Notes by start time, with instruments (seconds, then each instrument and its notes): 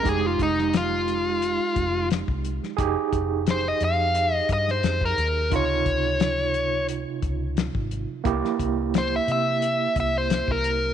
0.03 fingered electric bass F1, tine electric piano G#3 D#4 G4, kick, closed hi-hat
0.09 lead electric guitar G#4
0.26 lead electric guitar F4
0.39 fingered electric bass F1, lead electric guitar D#4, kick, closed hi-hat
0.59 snare
0.73 lead electric guitar F4, snare, closed hi-hat
1.08 closed hi-hat
1.42 closed hi-hat
1.76 fingered electric bass F1, kick, closed hi-hat
2.10 snare, closed hi-hat
2.28 fingered electric bass C2, kick
2.45 closed hi-hat
2.64 snare
2.77 fingered electric bass F1, tine electric piano D#4 G4 G#4, kick, closed hi-hat
3.12 fingered electric bass F1, kick, closed hi-hat
3.47 lead electric guitar C5, snare, closed hi-hat
3.68 lead electric guitar D#5
3.80 fingered electric bass F2, lead electric guitar F5, closed hi-hat
4.15 closed hi-hat
4.33 lead electric guitar D#5
4.49 fingered electric bass G2, kick, closed hi-hat
4.53 lead electric guitar D#5
4.68 lead electric guitar C5, snare
4.83 fingered electric bass F2, snare, closed hi-hat
5.01 kick
5.05 lead electric guitar A#4
5.17 fingered electric bass D#2, closed hi-hat
5.50 fingered electric bass C#2, tine electric piano C3 D#4 F4, kick, closed hi-hat
5.56 lead electric guitar C#5
5.86 fingered electric bass C#2, kick, closed hi-hat
6.20 snare, closed hi-hat
6.54 closed hi-hat
6.88 closed hi-hat
7.22 fingered electric bass C#2, kick, closed hi-hat
7.57 snare, closed hi-hat
7.75 fingered electric bass G#1, kick
7.91 closed hi-hat
8.24 fingered electric bass C2, tine electric piano A#3 E4 G4, kick, closed hi-hat
8.45 snare
8.59 fingered electric bass C2, kick, closed hi-hat
8.94 lead electric guitar C5, snare, closed hi-hat
9.16 lead electric guitar E5
9.28 fingered electric bass C3, closed hi-hat
9.32 lead electric guitar E5
9.62 closed hi-hat
9.96 fingered electric bass C2, kick, closed hi-hat
10.00 lead electric guitar E5
10.18 lead electric guitar C5
10.30 snare, closed hi-hat
10.48 fingered electric bass C2, lead electric guitar A#4, kick
10.64 closed hi-hat